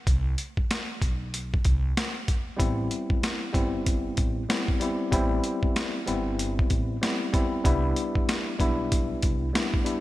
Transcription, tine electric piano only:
2.57 G3 B3 C4 E4
3.52 G3 B3 C4 E4
4.49 G3 B3 C4 E4
4.80 G3 B3 C4 E4
5.11 G3 B3 C4 E4
6.06 G3 B3 C4 E4
7.01 G3 B3 C4 E4
7.32 G3 B3 C4 E4
7.64 G3 B3 D4 E4
8.58 G3 B3 D4 E4
9.53 G3 B3 D4 E4
9.84 G3 B3 D4 E4

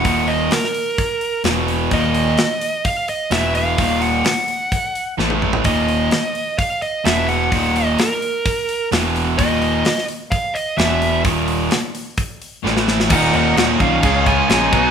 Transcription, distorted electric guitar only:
0.05 D#2 A#2 D#3
1.44 E2 B2 E3
1.91 D#2 A#2 D#3
3.31 E2 B2 E3
3.78 D#2 A#2 D#3
5.18 A2 E3 A3
5.64 D#2 A#2 D#3
7.04 E2 B2 E3
7.51 D#2 A#2 D#3
8.92 E2 B2 E3
9.38 D#2 A#2 D#3
10.78 E2 B2 E3
11.25 D#2 A#2 D#3
12.64 A2 E3 A3
13.10 D#2 A#2 D#3
13.34 D#2 A#2 D#3
13.58 D#2 A#2 D#3
13.80 D#2 A#2 D#3
14.03 C#3 G#3 C#4
14.26 C#3 G#3 C#4
14.49 C#3 G#3 C#4
14.72 B2 F#3 B3

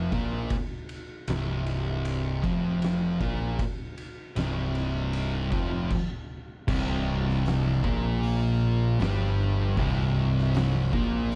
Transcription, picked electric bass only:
0.12 A#1
1.28 C1
2.44 F1
3.21 A#1
4.36 C1
5.52 F1
6.68 C1
7.84 A#1
9.00 G1
9.77 C1
10.93 A#1

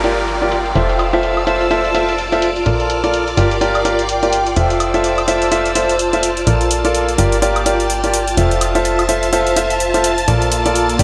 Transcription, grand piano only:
0.04 F4 G4 A#4 D5
0.42 F4 G4 A#4 D5
0.75 F4 A4 C5 E5
1.13 F4 A4 C5 E5
1.47 F4 A4 C5 E5
1.71 F4 A4 C5 E5
1.95 F4 A4 C5 E5
2.32 F4 A4 C5 E5
2.66 F4 A4 A#4 D5
3.04 F4 A4 A#4 D5
3.37 F4 G4 A#4 D5
3.61 F4 G4 A#4 D5
3.85 F4 G4 A#4 D5
4.23 F4 G4 A#4 D5
4.56 F4 A4 C5 E5
4.94 F4 A4 C5 E5
5.28 F4 A4 C5 E5
5.52 F4 A4 C5 E5
5.75 F4 A4 C5 E5
6.13 F4 A4 C5 E5
6.47 F4 A4 A#4 D5
6.85 F4 A4 A#4 D5
7.18 F4 G4 A#4 D5
7.42 F4 G4 A#4 D5
7.66 F4 G4 A#4 D5
8.04 F4 G4 A#4 D5
8.37 F4 A4 C5 E5
8.75 F4 A4 C5 E5
9.09 F4 A4 C5 E5
9.33 F4 A4 C5 E5
9.56 F4 A4 C5 E5
9.94 F4 A4 C5 E5
10.28 F4 A4 A#4 D5
10.66 F4 A4 A#4 D5
10.99 F4 G4 A#4 D5

